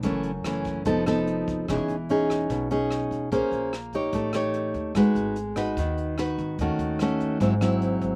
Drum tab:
HH |xxxxxxxx|xxxxxxxx|xxxxxxxx|xxxxxxxx|
SD |--r--r--|r--r--r-|--r--r--|r--r--r-|
BD |o--oo--o|o--oo--o|o--oo--o|o--oo--o|

HH |xxxxxxxx|
SD |--r--r--|
BD |o--oo--o|